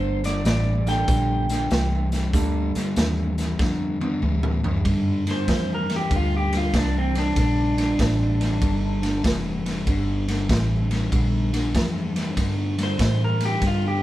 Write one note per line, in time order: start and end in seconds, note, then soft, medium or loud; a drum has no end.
0.00 0.44 G1 medium
0.00 0.20 G2 medium
0.00 0.20 D3 medium
0.00 0.25 C5 medium
0.24 0.43 G2 medium
0.24 0.43 D3 medium
0.24 0.45 D5 medium
0.24 snare soft
0.24 closed hi-hat medium
0.45 1.06 A1 medium
0.45 0.83 G2 medium
0.45 0.83 E3 medium
0.45 0.89 D5 loud
0.45 snare loud
0.45 closed hi-hat medium
0.86 1.06 G2 medium
0.86 1.06 E3 medium
0.86 1.67 G3 medium
0.86 1.67 A#3 medium
0.86 1.67 D4 medium
0.86 1.67 F4 medium
0.86 1.67 A4 medium
0.86 4.19 G5 medium
0.86 snare soft
0.86 closed hi-hat medium
1.08 1.69 A#1 medium
1.08 1.45 G2 medium
1.08 1.46 D3 medium
1.08 kick loud
1.08 snare soft
1.08 closed hi-hat medium
1.49 1.69 G2 medium
1.49 1.69 D3 medium
1.49 snare soft
1.49 closed hi-hat medium
1.71 2.32 C2 medium
1.71 2.09 G2 medium
1.71 2.09 E3 medium
1.71 snare loud
1.71 closed hi-hat medium
2.12 2.32 G2 medium
2.12 2.32 E3 medium
2.12 snare soft
2.12 closed hi-hat medium
2.33 2.72 D2 medium
2.33 2.71 G2 medium
2.33 2.71 D3 medium
2.33 3.30 G3 medium
2.33 3.30 A#3 medium
2.33 3.30 D4 medium
2.33 3.30 F4 medium
2.33 3.30 A4 medium
2.33 kick loud
2.33 snare soft
2.33 closed hi-hat medium
2.75 2.95 G2 medium
2.75 2.95 D3 medium
2.75 muted fingered electric bass stroke soft
2.75 snare soft
2.75 closed hi-hat medium
2.96 3.58 D#2 medium
2.96 3.34 G2 medium
2.96 3.34 E3 medium
2.96 snare loud
2.96 closed hi-hat medium
3.38 3.58 G2 medium
3.38 3.58 E3 medium
3.38 snare soft
3.38 closed hi-hat medium
3.59 4.20 F2 medium
3.59 3.97 G2 medium
3.59 3.97 D3 medium
3.59 kick loud
3.59 snare medium
4.01 4.20 G2 medium
4.01 4.21 D3 medium
4.01 high tom medium
4.22 4.84 D2 medium
4.22 4.60 G2 medium
4.22 4.60 E3 loud
4.22 mid tom medium
4.43 mid tom medium
4.64 4.83 G2 medium
4.64 4.83 E3 medium
4.64 floor tom medium
4.85 5.46 G2 medium
4.85 5.23 G2 medium
4.85 5.23 D3 medium
4.85 kick medium
4.85 ride medium
5.27 5.46 G2 medium
5.27 5.46 D3 medium
5.27 snare soft
5.27 ride medium
5.31 5.70 C5 medium
5.48 6.09 F2 medium
5.48 5.85 G2 medium
5.48 5.86 E3 medium
5.48 kick medium
5.48 snare loud
5.48 ride medium
5.74 5.92 A#4 medium
5.89 6.09 G2 medium
5.89 6.09 E3 medium
5.89 snare soft
5.89 ride medium
5.96 6.14 G4 medium
6.11 6.72 D2 medium
6.11 6.48 G2 medium
6.11 6.49 D3 medium
6.11 kick medium
6.11 ride medium
6.16 6.34 F4 medium
6.37 6.55 G4 medium
6.53 6.72 G2 medium
6.53 6.72 D3 medium
6.53 snare soft
6.53 ride medium
6.57 6.75 F4 medium
6.73 7.35 C2 medium
6.73 7.11 G2 medium
6.73 7.11 E3 medium
6.73 kick medium
6.73 snare loud
6.73 ride medium
6.78 6.96 D4 medium
6.98 7.17 C4 medium
7.15 7.34 G2 medium
7.15 7.35 E3 medium
7.15 7.37 D4 medium
7.15 snare soft
7.15 ride medium
7.36 7.97 A#1 medium
7.36 7.74 G2 medium
7.36 7.74 D3 medium
7.36 9.22 D4 medium
7.36 kick medium
7.36 snare soft
7.36 ride medium
7.77 7.97 G2 medium
7.77 7.97 D3 medium
7.77 snare soft
7.77 ride medium
7.99 8.60 A1 medium
7.99 8.36 G2 medium
7.99 8.37 E3 medium
7.99 kick medium
7.99 snare loud
7.99 ride medium
8.40 8.60 G2 medium
8.40 8.60 E3 medium
8.40 snare soft
8.40 ride medium
8.62 9.23 G1 medium
8.62 8.99 G2 medium
8.62 8.99 D3 medium
8.62 kick medium
8.62 ride medium
9.02 9.22 G2 medium
9.02 9.22 D3 medium
9.02 snare soft
9.02 ride medium
9.24 9.85 F1 medium
9.24 9.62 G2 medium
9.24 9.62 E3 loud
9.24 kick medium
9.24 snare loud
9.24 ride medium
9.66 9.85 G2 medium
9.66 9.85 E3 medium
9.66 snare soft
9.66 ride medium
9.87 10.48 G1 medium
9.87 10.24 G2 medium
9.87 10.25 D3 medium
9.87 kick medium
9.87 ride medium
10.28 10.48 G2 medium
10.28 10.48 D3 medium
10.28 snare soft
10.28 ride medium
10.49 11.10 A1 medium
10.49 10.87 G2 medium
10.49 10.87 E3 medium
10.49 kick medium
10.49 snare loud
10.49 ride medium
10.91 11.10 G2 medium
10.91 11.10 E3 medium
10.91 snare soft
10.91 ride medium
11.12 11.73 A#1 loud
11.12 11.49 G2 medium
11.12 11.50 D3 medium
11.12 kick medium
11.12 ride medium
11.53 11.73 G2 medium
11.53 11.73 D3 medium
11.53 snare soft
11.53 ride medium
11.74 12.35 F2 medium
11.74 12.12 G2 medium
11.74 12.12 E3 loud
11.74 kick medium
11.74 snare loud
11.74 ride medium
12.16 12.35 G2 medium
12.16 12.35 E3 medium
12.16 snare soft
12.16 ride medium
12.36 12.74 G2 medium
12.36 12.98 G2 medium
12.36 12.74 D3 medium
12.36 kick medium
12.36 snare soft
12.36 ride medium
12.78 12.98 G2 medium
12.78 12.98 D3 medium
12.78 snare soft
12.78 ride medium
12.83 13.22 C5 medium
12.99 13.36 G2 medium
12.99 13.60 A2 medium
12.99 13.37 E3 medium
12.99 kick medium
12.99 snare loud
12.99 ride medium
13.24 13.43 A#4 medium
13.40 13.60 G2 medium
13.40 13.60 E3 medium
13.40 snare soft
13.40 ride medium
13.45 13.64 G4 medium
13.62 13.99 G2 medium
13.62 14.03 G2 medium
13.62 13.99 D3 medium
13.62 kick medium
13.62 snare soft
13.62 ride medium
13.67 13.85 F4 medium
13.88 14.03 G4 medium